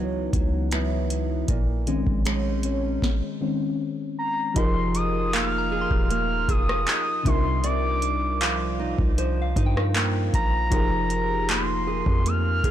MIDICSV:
0, 0, Header, 1, 7, 480
1, 0, Start_track
1, 0, Key_signature, -4, "minor"
1, 0, Tempo, 769231
1, 927, Time_signature, 4, 2, 24, 8
1, 7930, End_track
2, 0, Start_track
2, 0, Title_t, "Soft synth lead"
2, 0, Program_c, 0, 80
2, 2612, Note_on_c, 0, 82, 93
2, 2833, Note_off_c, 0, 82, 0
2, 2848, Note_on_c, 0, 84, 113
2, 3091, Note_on_c, 0, 87, 98
2, 3100, Note_off_c, 0, 84, 0
2, 3329, Note_on_c, 0, 89, 105
2, 3338, Note_off_c, 0, 87, 0
2, 3808, Note_off_c, 0, 89, 0
2, 3812, Note_on_c, 0, 89, 112
2, 4055, Note_on_c, 0, 87, 112
2, 4064, Note_off_c, 0, 89, 0
2, 4538, Note_on_c, 0, 84, 104
2, 4547, Note_off_c, 0, 87, 0
2, 4776, Note_on_c, 0, 86, 107
2, 4785, Note_off_c, 0, 84, 0
2, 5491, Note_off_c, 0, 86, 0
2, 6455, Note_on_c, 0, 82, 110
2, 7176, Note_on_c, 0, 84, 99
2, 7185, Note_off_c, 0, 82, 0
2, 7659, Note_on_c, 0, 89, 121
2, 7668, Note_off_c, 0, 84, 0
2, 7930, Note_off_c, 0, 89, 0
2, 7930, End_track
3, 0, Start_track
3, 0, Title_t, "Synth bell"
3, 0, Program_c, 1, 98
3, 2847, Note_on_c, 1, 75, 62
3, 3328, Note_on_c, 1, 77, 84
3, 3483, Note_on_c, 1, 82, 55
3, 3627, Note_on_c, 1, 84, 54
3, 3967, Note_off_c, 1, 75, 0
3, 4448, Note_off_c, 1, 77, 0
3, 4585, Note_off_c, 1, 82, 0
3, 4717, Note_off_c, 1, 84, 0
3, 4768, Note_on_c, 1, 74, 58
3, 5251, Note_on_c, 1, 77, 57
3, 5732, Note_on_c, 1, 72, 65
3, 5869, Note_off_c, 1, 77, 0
3, 5876, Note_on_c, 1, 77, 59
3, 5888, Note_off_c, 1, 74, 0
3, 6028, Note_on_c, 1, 79, 55
3, 6849, Note_off_c, 1, 72, 0
3, 6981, Note_off_c, 1, 77, 0
3, 7118, Note_off_c, 1, 79, 0
3, 7930, End_track
4, 0, Start_track
4, 0, Title_t, "FM electric piano"
4, 0, Program_c, 2, 5
4, 0, Control_c, 2, 64, 127
4, 0, Note_on_c, 2, 52, 52
4, 0, Note_on_c, 2, 54, 47
4, 0, Note_on_c, 2, 59, 49
4, 0, Note_on_c, 2, 63, 61
4, 934, Control_c, 2, 64, 0
4, 935, Note_off_c, 2, 59, 0
4, 937, Note_off_c, 2, 63, 0
4, 939, Note_off_c, 2, 52, 0
4, 940, Note_off_c, 2, 54, 0
4, 1056, Control_c, 2, 64, 127
4, 1168, Note_on_c, 2, 51, 54
4, 1170, Note_on_c, 2, 56, 49
4, 1172, Note_on_c, 2, 60, 51
4, 1174, Note_on_c, 2, 61, 60
4, 2119, Note_off_c, 2, 51, 0
4, 2122, Note_off_c, 2, 56, 0
4, 2124, Note_off_c, 2, 60, 0
4, 2125, Note_off_c, 2, 61, 0
4, 2127, Note_on_c, 2, 51, 47
4, 2130, Note_on_c, 2, 56, 41
4, 2131, Note_on_c, 2, 60, 43
4, 2132, Note_on_c, 2, 61, 52
4, 2343, Note_off_c, 2, 51, 0
4, 2344, Note_off_c, 2, 56, 0
4, 2345, Note_off_c, 2, 60, 0
4, 2346, Note_off_c, 2, 61, 0
4, 2836, Note_on_c, 2, 53, 74
4, 2844, Note_on_c, 2, 63, 65
4, 2849, Note_on_c, 2, 67, 65
4, 2856, Control_c, 2, 64, 0
4, 2857, Note_on_c, 2, 68, 66
4, 2864, Note_on_c, 2, 70, 78
4, 2970, Control_c, 2, 64, 127
4, 4496, Note_off_c, 2, 53, 0
4, 4500, Note_off_c, 2, 63, 0
4, 4503, Note_off_c, 2, 67, 0
4, 4507, Note_off_c, 2, 68, 0
4, 4511, Note_off_c, 2, 70, 0
4, 4514, Note_on_c, 2, 48, 65
4, 4520, Note_on_c, 2, 55, 57
4, 4525, Note_on_c, 2, 62, 61
4, 4531, Note_on_c, 2, 63, 59
4, 4535, Control_c, 2, 64, 0
4, 4537, Note_on_c, 2, 65, 63
4, 4543, Note_on_c, 2, 70, 71
4, 4637, Control_c, 2, 64, 127
4, 6416, Note_off_c, 2, 48, 0
4, 6419, Note_off_c, 2, 55, 0
4, 6421, Note_off_c, 2, 62, 0
4, 6424, Note_off_c, 2, 63, 0
4, 6427, Note_off_c, 2, 65, 0
4, 6430, Note_off_c, 2, 70, 0
4, 6678, Note_on_c, 2, 53, 73
4, 6685, Note_on_c, 2, 63, 68
4, 6692, Note_on_c, 2, 67, 68
4, 6696, Control_c, 2, 64, 0
4, 6700, Note_on_c, 2, 68, 67
4, 6706, Note_on_c, 2, 70, 82
4, 6788, Control_c, 2, 64, 127
4, 7930, Note_off_c, 2, 53, 0
4, 7930, Note_off_c, 2, 63, 0
4, 7930, Note_off_c, 2, 67, 0
4, 7930, Note_off_c, 2, 68, 0
4, 7930, Note_off_c, 2, 70, 0
4, 7930, End_track
5, 0, Start_track
5, 0, Title_t, "Steel-string acoustic guitar"
5, 0, Program_c, 3, 25
5, 0, Note_on_c, 3, 49, 76
5, 0, Note_on_c, 3, 54, 70
5, 0, Note_on_c, 3, 59, 62
5, 0, Note_on_c, 3, 64, 64
5, 201, Note_off_c, 3, 54, 0
5, 208, Note_on_c, 3, 54, 60
5, 441, Note_off_c, 3, 54, 0
5, 445, Note_off_c, 3, 59, 0
5, 448, Note_off_c, 3, 64, 0
5, 449, Note_on_c, 3, 54, 64
5, 452, Note_on_c, 3, 59, 59
5, 455, Note_on_c, 3, 64, 69
5, 928, Note_off_c, 3, 49, 0
5, 929, Note_on_c, 3, 46, 82
5, 976, Note_off_c, 3, 54, 0
5, 978, Note_off_c, 3, 59, 0
5, 979, Note_off_c, 3, 64, 0
5, 1168, Note_on_c, 3, 56, 56
5, 1406, Note_off_c, 3, 56, 0
5, 1409, Note_on_c, 3, 56, 59
5, 1413, Note_on_c, 3, 61, 59
5, 1416, Note_on_c, 3, 63, 65
5, 1640, Note_off_c, 3, 61, 0
5, 1647, Note_on_c, 3, 61, 57
5, 1935, Note_off_c, 3, 61, 0
5, 1936, Note_off_c, 3, 46, 0
5, 2252, Note_off_c, 3, 56, 0
5, 2252, Note_off_c, 3, 63, 0
5, 2848, Note_on_c, 3, 53, 86
5, 3328, Note_on_c, 3, 58, 65
5, 3567, Note_on_c, 3, 68, 70
5, 3806, Note_off_c, 3, 58, 0
5, 3808, Note_on_c, 3, 58, 68
5, 4039, Note_off_c, 3, 68, 0
5, 4047, Note_on_c, 3, 68, 71
5, 4288, Note_on_c, 3, 63, 67
5, 4527, Note_on_c, 3, 48, 85
5, 4575, Note_off_c, 3, 68, 0
5, 4761, Note_off_c, 3, 48, 0
5, 4768, Note_on_c, 3, 48, 81
5, 4787, Note_off_c, 3, 58, 0
5, 5032, Note_off_c, 3, 53, 0
5, 5248, Note_on_c, 3, 53, 65
5, 5267, Note_off_c, 3, 63, 0
5, 5488, Note_on_c, 3, 63, 72
5, 5726, Note_off_c, 3, 53, 0
5, 5728, Note_on_c, 3, 53, 68
5, 5964, Note_off_c, 3, 63, 0
5, 5967, Note_on_c, 3, 63, 70
5, 6209, Note_on_c, 3, 58, 65
5, 6684, Note_off_c, 3, 53, 0
5, 6687, Note_on_c, 3, 53, 85
5, 6688, Note_off_c, 3, 48, 0
5, 7167, Note_off_c, 3, 58, 0
5, 7169, Note_on_c, 3, 58, 64
5, 7408, Note_on_c, 3, 68, 73
5, 7645, Note_off_c, 3, 58, 0
5, 7648, Note_on_c, 3, 58, 68
5, 7882, Note_off_c, 3, 68, 0
5, 7890, Note_on_c, 3, 68, 68
5, 7930, Note_off_c, 3, 53, 0
5, 7930, Note_off_c, 3, 58, 0
5, 7930, Note_off_c, 3, 63, 0
5, 7930, Note_off_c, 3, 68, 0
5, 7930, End_track
6, 0, Start_track
6, 0, Title_t, "808-style bass"
6, 0, Program_c, 4, 38
6, 0, Note_on_c, 4, 37, 98
6, 183, Note_off_c, 4, 37, 0
6, 208, Note_on_c, 4, 37, 109
6, 903, Note_off_c, 4, 37, 0
6, 927, Note_on_c, 4, 34, 102
6, 1273, Note_off_c, 4, 34, 0
6, 1289, Note_on_c, 4, 34, 94
6, 1864, Note_off_c, 4, 34, 0
6, 2847, Note_on_c, 4, 29, 114
6, 3662, Note_off_c, 4, 29, 0
6, 3686, Note_on_c, 4, 27, 98
6, 4032, Note_off_c, 4, 27, 0
6, 4047, Note_on_c, 4, 29, 106
6, 4278, Note_off_c, 4, 29, 0
6, 4527, Note_on_c, 4, 36, 103
6, 5582, Note_off_c, 4, 36, 0
6, 5607, Note_on_c, 4, 36, 99
6, 5953, Note_off_c, 4, 36, 0
6, 5967, Note_on_c, 4, 43, 105
6, 6428, Note_off_c, 4, 43, 0
6, 6450, Note_on_c, 4, 34, 103
6, 6679, Note_off_c, 4, 34, 0
6, 6688, Note_on_c, 4, 29, 106
6, 7502, Note_off_c, 4, 29, 0
6, 7527, Note_on_c, 4, 41, 99
6, 7873, Note_off_c, 4, 41, 0
6, 7887, Note_on_c, 4, 29, 103
6, 7930, Note_off_c, 4, 29, 0
6, 7930, End_track
7, 0, Start_track
7, 0, Title_t, "Drums"
7, 207, Note_on_c, 9, 36, 95
7, 209, Note_on_c, 9, 42, 69
7, 269, Note_off_c, 9, 36, 0
7, 271, Note_off_c, 9, 42, 0
7, 446, Note_on_c, 9, 42, 67
7, 452, Note_on_c, 9, 26, 101
7, 509, Note_off_c, 9, 42, 0
7, 515, Note_off_c, 9, 26, 0
7, 688, Note_on_c, 9, 42, 72
7, 751, Note_off_c, 9, 42, 0
7, 925, Note_on_c, 9, 42, 82
7, 927, Note_on_c, 9, 36, 116
7, 988, Note_off_c, 9, 42, 0
7, 989, Note_off_c, 9, 36, 0
7, 1167, Note_on_c, 9, 42, 59
7, 1230, Note_off_c, 9, 42, 0
7, 1290, Note_on_c, 9, 36, 93
7, 1352, Note_off_c, 9, 36, 0
7, 1407, Note_on_c, 9, 42, 74
7, 1414, Note_on_c, 9, 26, 102
7, 1469, Note_off_c, 9, 42, 0
7, 1476, Note_off_c, 9, 26, 0
7, 1643, Note_on_c, 9, 42, 65
7, 1705, Note_off_c, 9, 42, 0
7, 1887, Note_on_c, 9, 36, 100
7, 1894, Note_on_c, 9, 38, 85
7, 1949, Note_off_c, 9, 36, 0
7, 1957, Note_off_c, 9, 38, 0
7, 2845, Note_on_c, 9, 42, 84
7, 2847, Note_on_c, 9, 36, 127
7, 2908, Note_off_c, 9, 42, 0
7, 2909, Note_off_c, 9, 36, 0
7, 3087, Note_on_c, 9, 42, 65
7, 3149, Note_off_c, 9, 42, 0
7, 3328, Note_on_c, 9, 42, 84
7, 3335, Note_on_c, 9, 39, 109
7, 3391, Note_off_c, 9, 42, 0
7, 3398, Note_off_c, 9, 39, 0
7, 3687, Note_on_c, 9, 36, 101
7, 3749, Note_off_c, 9, 36, 0
7, 3809, Note_on_c, 9, 42, 73
7, 3872, Note_off_c, 9, 42, 0
7, 4047, Note_on_c, 9, 36, 100
7, 4049, Note_on_c, 9, 42, 69
7, 4109, Note_off_c, 9, 36, 0
7, 4111, Note_off_c, 9, 42, 0
7, 4177, Note_on_c, 9, 37, 95
7, 4239, Note_off_c, 9, 37, 0
7, 4285, Note_on_c, 9, 42, 72
7, 4292, Note_on_c, 9, 39, 109
7, 4348, Note_off_c, 9, 42, 0
7, 4354, Note_off_c, 9, 39, 0
7, 4527, Note_on_c, 9, 36, 114
7, 4529, Note_on_c, 9, 42, 80
7, 4589, Note_off_c, 9, 36, 0
7, 4592, Note_off_c, 9, 42, 0
7, 4765, Note_on_c, 9, 42, 82
7, 4828, Note_off_c, 9, 42, 0
7, 5005, Note_on_c, 9, 42, 64
7, 5068, Note_off_c, 9, 42, 0
7, 5247, Note_on_c, 9, 42, 81
7, 5254, Note_on_c, 9, 39, 114
7, 5310, Note_off_c, 9, 42, 0
7, 5317, Note_off_c, 9, 39, 0
7, 5607, Note_on_c, 9, 36, 103
7, 5669, Note_off_c, 9, 36, 0
7, 5729, Note_on_c, 9, 42, 70
7, 5791, Note_off_c, 9, 42, 0
7, 5967, Note_on_c, 9, 36, 100
7, 5969, Note_on_c, 9, 42, 69
7, 6030, Note_off_c, 9, 36, 0
7, 6032, Note_off_c, 9, 42, 0
7, 6097, Note_on_c, 9, 37, 95
7, 6160, Note_off_c, 9, 37, 0
7, 6206, Note_on_c, 9, 42, 70
7, 6213, Note_on_c, 9, 39, 103
7, 6269, Note_off_c, 9, 42, 0
7, 6275, Note_off_c, 9, 39, 0
7, 6450, Note_on_c, 9, 36, 106
7, 6451, Note_on_c, 9, 42, 76
7, 6513, Note_off_c, 9, 36, 0
7, 6514, Note_off_c, 9, 42, 0
7, 6687, Note_on_c, 9, 42, 87
7, 6688, Note_on_c, 9, 36, 123
7, 6750, Note_off_c, 9, 42, 0
7, 6751, Note_off_c, 9, 36, 0
7, 6927, Note_on_c, 9, 42, 63
7, 6990, Note_off_c, 9, 42, 0
7, 7168, Note_on_c, 9, 42, 83
7, 7175, Note_on_c, 9, 39, 109
7, 7231, Note_off_c, 9, 42, 0
7, 7238, Note_off_c, 9, 39, 0
7, 7528, Note_on_c, 9, 36, 97
7, 7590, Note_off_c, 9, 36, 0
7, 7650, Note_on_c, 9, 42, 75
7, 7712, Note_off_c, 9, 42, 0
7, 7887, Note_on_c, 9, 36, 95
7, 7888, Note_on_c, 9, 42, 67
7, 7930, Note_off_c, 9, 36, 0
7, 7930, Note_off_c, 9, 42, 0
7, 7930, End_track
0, 0, End_of_file